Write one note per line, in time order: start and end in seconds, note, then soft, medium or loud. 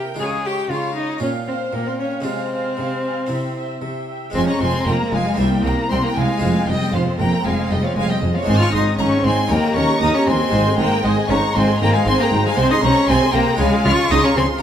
0.00 0.10 C3 medium
0.00 0.11 C3 medium
0.00 0.13 A#3 soft
0.00 0.14 C4 soft
0.00 0.15 E4 soft
0.00 0.18 A#4 medium
0.00 0.19 E5 soft
0.00 0.19 G5 medium
0.14 1.16 G#3 soft
0.14 1.17 F4 soft
0.19 0.61 C#3 soft
0.19 0.62 C#3 medium
0.19 0.47 G#4 medium
0.19 0.44 C#5 medium
0.19 0.42 F5 medium
0.19 0.27 G#5 medium
0.43 0.72 G4 medium
0.43 0.69 C#5 medium
0.43 0.68 F5 soft
0.43 0.69 G5 medium
0.69 1.13 C#3 medium
0.69 1.13 C#3 soft
0.69 0.95 F4 medium
0.69 0.94 C#5 medium
0.69 0.94 F5 soft
0.69 0.96 F5 medium
0.95 1.21 D#4 medium
0.95 1.21 C#5 soft
0.95 1.21 D#5 medium
0.95 1.21 F5 soft
1.18 1.65 A#2 medium
1.18 1.64 A#2 soft
1.18 2.20 C#4 soft
1.18 1.30 C#4 medium
1.18 2.21 F4 soft
1.18 1.29 C#5 medium
1.18 1.46 F5 medium
1.18 1.46 G5 soft
1.46 1.55 C4 medium
1.46 1.72 C5 medium
1.46 1.71 F5 soft
1.46 1.70 G5 soft
1.72 2.15 A#2 soft
1.72 2.16 A#2 medium
1.72 1.88 A#3 medium
1.72 1.85 A#4 medium
1.72 1.97 F5 soft
1.72 1.97 G5 medium
1.84 2.01 C4 medium
1.84 1.98 C5 medium
1.97 2.26 C#4 medium
1.97 2.23 C#5 medium
1.97 2.23 F5 soft
1.97 2.24 G5 soft
2.21 3.25 G#3 soft
2.21 3.25 C4 soft
2.21 3.26 F4 soft
2.21 3.79 C5 medium
2.21 2.50 F5 soft
2.21 2.49 G#5 soft
2.25 2.69 C3 medium
2.25 2.68 C3 soft
2.25 3.82 C4 medium
2.50 2.76 F5 soft
2.50 2.75 G#5 soft
2.77 3.20 C3 soft
2.77 3.21 C3 medium
2.77 3.02 F5 soft
2.77 3.02 G#5 soft
3.03 3.29 F5 soft
3.03 3.29 G#5 soft
3.27 3.73 C3 soft
3.27 3.74 C3 medium
3.27 4.30 C4 soft
3.27 4.31 E4 soft
3.27 3.54 E5 soft
3.27 3.54 G5 soft
3.55 3.80 E5 soft
3.55 3.81 G5 soft
3.81 4.25 C3 soft
3.81 4.26 C3 medium
3.81 4.08 E5 soft
3.81 4.07 G5 soft
4.09 4.34 E5 soft
4.09 4.34 G5 soft
4.30 5.33 G#3 medium
4.30 5.34 C4 medium
4.30 4.46 C4 medium
4.30 5.35 G#4 medium
4.30 4.39 C6 loud
4.34 4.43 F1 medium
4.34 4.58 F2 medium
4.34 4.42 F2 medium
4.34 4.47 F3 medium
4.34 4.47 G#5 medium
4.46 4.61 G#3 medium
4.46 4.60 C#4 medium
4.46 4.60 A#5 medium
4.46 4.61 C#6 medium
4.59 4.69 F1 medium
4.59 4.68 F2 medium
4.59 4.84 F2 medium
4.59 4.74 F3 medium
4.59 4.86 C4 medium
4.59 4.87 G#5 loud
4.59 4.87 C6 loud
4.74 4.87 G#3 medium
4.84 4.95 F1 medium
4.84 4.95 F2 medium
4.84 5.11 F2 medium
4.84 4.99 F3 medium
4.84 5.13 A#3 medium
4.84 4.95 G5 medium
4.84 5.12 A#5 loud
5.00 5.13 G#3 medium
5.11 5.21 F1 medium
5.11 5.36 F2 medium
5.11 5.21 F2 medium
5.11 5.25 F3 medium
5.11 5.39 G#3 medium
5.11 5.38 F5 medium
5.11 5.39 G#5 medium
5.25 5.39 G#3 medium
5.34 5.65 G3 medium
5.34 6.37 A#3 medium
5.34 6.38 E4 medium
5.34 6.38 C5 medium
5.34 5.64 G5 medium
5.38 5.46 C2 medium
5.38 5.47 C2 medium
5.38 5.62 C2 medium
5.38 5.51 C4 medium
5.38 5.47 E5 medium
5.51 5.65 A#3 medium
5.64 5.72 C2 medium
5.64 5.73 C2 medium
5.64 5.88 C2 medium
5.64 5.89 A#3 medium
5.64 5.77 C4 medium
5.64 5.74 G5 medium
5.64 5.90 A#5 loud
5.77 5.90 A#3 medium
5.89 5.99 C2 medium
5.89 6.14 C2 medium
5.89 6.02 C4 medium
5.89 5.96 G5 medium
5.89 6.03 C6 loud
6.02 6.08 A#3 medium
6.02 6.16 A#3 medium
6.02 6.17 G5 medium
6.02 6.16 A#5 loud
6.15 6.40 C2 medium
6.15 6.25 C2 medium
6.15 6.68 G#3 medium
6.15 6.29 C4 medium
6.15 6.69 F5 medium
6.15 6.67 G#5 loud
6.28 6.42 A#3 medium
6.38 6.50 F1 medium
6.38 8.41 G#3 medium
6.38 6.54 G#3 medium
6.38 8.42 F4 medium
6.38 8.43 C5 medium
6.42 6.65 F2 medium
6.42 6.51 F2 medium
6.55 6.68 C4 medium
6.67 6.76 F1 medium
6.67 6.91 F2 medium
6.67 6.76 F2 medium
6.67 6.93 G3 medium
6.67 6.80 G#3 medium
6.67 6.93 D#5 medium
6.67 6.93 G5 loud
6.80 6.93 C4 medium
6.92 7.02 F1 medium
6.92 7.17 F2 medium
6.92 7.02 F2 medium
6.92 7.19 F3 medium
6.92 7.05 G#3 medium
6.92 7.20 C5 medium
6.92 7.01 F5 medium
7.06 7.19 C4 medium
7.18 7.27 F1 medium
7.18 7.43 F2 medium
7.18 7.28 F2 medium
7.18 7.32 G#3 medium
7.18 7.43 A#3 medium
7.18 7.45 G5 medium
7.18 7.44 A#5 medium
7.32 7.45 C4 medium
7.44 7.53 F1 medium
7.44 7.68 F2 medium
7.44 7.54 F2 medium
7.44 7.72 G#3 medium
7.44 7.57 G#3 medium
7.44 7.71 F5 medium
7.44 7.70 G#5 medium
7.58 7.71 C4 medium
7.70 7.79 F1 medium
7.70 7.94 F2 medium
7.70 7.79 F2 medium
7.70 7.84 G3 medium
7.70 7.83 G#3 medium
7.70 7.84 D#5 medium
7.70 7.75 G5 loud
7.83 7.96 F3 medium
7.83 7.96 C4 medium
7.83 7.96 C#5 medium
7.83 7.97 F5 medium
7.95 8.04 F1 medium
7.95 8.20 F2 medium
7.95 8.05 F2 medium
7.95 8.08 G#3 medium
7.95 8.10 F5 medium
7.95 8.09 G#5 loud
8.08 8.16 G3 medium
8.08 8.22 C4 medium
8.08 8.36 D#5 medium
8.08 8.16 G5 loud
8.21 8.30 F1 medium
8.21 8.45 F2 medium
8.21 8.31 F2 medium
8.21 8.35 G#3 medium
8.33 8.39 F3 medium
8.33 8.48 C4 medium
8.33 8.48 C#5 medium
8.33 8.40 F5 medium
8.43 9.45 G#3 medium
8.43 9.45 D#4 medium
8.43 9.46 C5 medium
8.47 8.56 G#1 medium
8.47 8.71 G#2 medium
8.47 8.56 G#2 medium
8.47 8.59 C4 loud
8.47 8.60 D#4 medium
8.47 8.61 G#5 medium
8.47 8.60 C6 loud
8.59 8.73 C4 medium
8.59 8.73 F4 medium
8.59 8.73 C#6 medium
8.59 8.73 F6 loud
8.72 8.82 G#1 medium
8.72 8.96 G#2 medium
8.72 8.81 G#2 medium
8.72 8.86 D#4 medium
8.72 8.98 D#4 medium
8.72 8.82 C6 medium
8.72 8.98 D#6 loud
8.86 8.99 C4 medium
8.98 9.07 G#1 medium
8.98 9.22 G#2 medium
8.98 9.07 G#2 medium
8.98 9.26 C#4 loud
8.98 9.11 D#4 medium
8.98 9.07 A#5 loud
8.98 9.24 C#6 loud
9.12 9.25 C4 medium
9.23 9.33 G#1 medium
9.23 9.48 G#2 medium
9.23 9.33 G#2 medium
9.23 9.50 C4 medium
9.23 9.38 D#4 medium
9.23 9.50 G#5 medium
9.23 9.50 C6 loud
9.39 9.51 C4 medium
9.47 9.58 D#2 medium
9.47 9.73 D#2 medium
9.47 9.77 A#3 loud
9.47 10.48 D#4 medium
9.47 10.49 C#5 medium
9.47 9.76 G5 medium
9.47 9.75 A#5 loud
9.52 9.63 A#4 medium
9.64 9.76 G4 medium
9.75 9.84 D#2 medium
9.75 9.99 D#2 medium
9.75 10.01 C#4 medium
9.75 9.89 A#4 medium
9.75 10.00 A#5 loud
9.75 10.01 C#6 loud
9.89 10.01 G4 medium
10.00 10.09 D#2 medium
10.00 10.24 D#2 medium
10.00 10.10 D#2 medium
10.00 10.16 D#4 loud
10.00 10.13 A#4 medium
10.00 10.12 A#5 medium
10.00 10.14 D#6 loud
10.14 10.29 C#4 loud
10.14 10.27 G4 medium
10.14 10.26 A#5 loud
10.14 10.28 C#6 loud
10.26 10.35 D#2 medium
10.26 10.50 D#2 medium
10.26 10.78 C4 loud
10.26 10.40 A#4 medium
10.26 10.78 G#5 loud
10.26 10.77 C6 loud
10.40 10.53 G4 medium
10.49 10.60 G#2 medium
10.49 12.50 G#3 medium
10.49 12.51 D#4 medium
10.49 12.52 C5 medium
10.53 10.61 G#1 medium
10.53 10.76 G#2 medium
10.53 10.65 C5 medium
10.66 10.78 G#4 medium
10.77 10.87 G#1 medium
10.77 10.85 G#2 medium
10.77 11.01 G#2 medium
10.77 11.03 A#3 loud
10.77 10.91 C5 medium
10.77 11.03 G5 loud
10.77 11.03 A#5 loud
10.91 11.03 G#4 medium
11.03 11.13 G#1 medium
11.03 11.27 G#2 medium
11.03 11.12 G#2 medium
11.03 11.12 G#3 loud
11.03 11.15 C5 medium
11.03 11.29 D#5 loud
11.03 11.28 G#5 loud
11.16 11.29 G#4 medium
11.28 11.38 G#1 medium
11.28 11.37 G#2 medium
11.28 11.52 G#2 medium
11.28 11.37 C#4 loud
11.28 11.42 C5 medium
11.28 11.54 A#5 loud
11.28 11.54 C#6 loud
11.42 11.55 G#4 medium
11.53 11.63 G#1 medium
11.53 11.63 G#2 loud
11.53 11.78 G#2 medium
11.53 11.80 C4 medium
11.53 11.67 C5 medium
11.53 11.80 G#5 medium
11.53 11.80 C6 loud
11.68 11.80 G#4 medium
11.79 11.89 G#1 medium
11.79 11.88 G#2 medium
11.79 12.03 G#2 medium
11.79 11.96 A#3 loud
11.79 11.93 C5 medium
11.79 11.93 G5 loud
11.79 11.92 A#5 loud
11.93 12.09 G#3 medium
11.93 12.06 G#4 medium
11.93 12.05 F5 medium
11.93 12.06 G#5 loud
12.05 12.15 G#1 medium
12.05 12.29 G#2 medium
12.05 12.14 G#2 medium
12.05 12.18 C4 loud
12.05 12.18 C5 medium
12.05 12.19 G#5 loud
12.05 12.18 C6 loud
12.18 12.27 A#3 loud
12.18 12.32 G#4 medium
12.18 12.44 G5 loud
12.18 12.43 A#5 loud
12.31 12.40 G#1 medium
12.31 12.54 G#2 medium
12.31 12.40 G#2 medium
12.31 12.44 C5 medium
12.45 12.50 G#3 medium
12.45 12.57 G#4 medium
12.45 12.57 F5 loud
12.45 12.57 G#5 loud
12.51 13.53 G#3 medium
12.51 13.54 D#4 medium
12.51 13.55 D#5 medium
12.56 12.65 C2 loud
12.56 12.79 C3 medium
12.56 12.65 C3 medium
12.56 12.72 C4 loud
12.56 12.69 C5 medium
12.56 12.70 G#5 loud
12.56 12.70 C6 loud
12.70 12.83 D#4 loud
12.70 12.83 G#4 medium
12.70 12.82 C6 loud
12.70 12.76 D#6 loud
12.81 12.90 C2 medium
12.81 13.05 C3 medium
12.81 12.91 C3 medium
12.81 13.11 C#4 loud
12.81 12.95 C5 medium
12.81 13.08 A#5 loud
12.81 13.07 C#6 loud
12.95 13.08 G#4 medium
13.07 13.16 C2 medium
13.07 13.30 C3 medium
13.07 13.17 C3 medium
13.07 13.33 C4 loud
13.07 13.19 C5 medium
13.07 13.33 G#5 loud
13.07 13.33 C6 loud
13.20 13.33 G#4 medium
13.32 13.42 C2 medium
13.32 13.57 C3 medium
13.32 13.42 C3 medium
13.32 13.59 A#3 loud
13.32 13.46 C5 medium
13.32 13.59 G5 loud
13.32 13.59 A#5 loud
13.46 13.58 G#4 medium
13.55 13.66 C#2 loud
13.55 14.57 G#3 medium
13.55 14.58 F4 medium
13.55 14.58 C#5 medium
13.55 13.85 G#5 loud
13.59 13.82 C#3 medium
13.59 13.68 C#3 loud
13.59 13.87 G#3 loud
13.59 13.71 G#4 medium
13.59 13.85 F5 loud
13.72 13.85 F4 medium
13.83 13.92 C#2 medium
13.83 14.08 C#3 medium
13.83 13.93 C#3 medium
13.83 14.12 F4 loud
13.83 13.97 G#4 medium
13.83 14.10 C#6 loud
13.83 13.91 F6 loud
13.97 14.10 F4 medium
14.09 14.18 C#2 loud
14.09 14.34 C#3 medium
14.09 14.19 C#3 medium
14.09 14.23 D#4 loud
14.09 14.22 G#4 medium
14.09 14.24 C6 loud
14.09 14.22 D#6 loud
14.22 14.29 C#4 loud
14.22 14.36 F4 medium
14.22 14.37 A#5 loud
14.22 14.36 C#6 loud
14.35 14.44 C#2 medium
14.35 14.44 C#3 medium
14.35 14.60 C#3 medium
14.35 14.44 C4 loud
14.35 14.49 G#4 medium
14.35 14.45 G#5 loud
14.35 14.61 C6 loud
14.48 14.62 F4 medium
14.58 14.62 G4 medium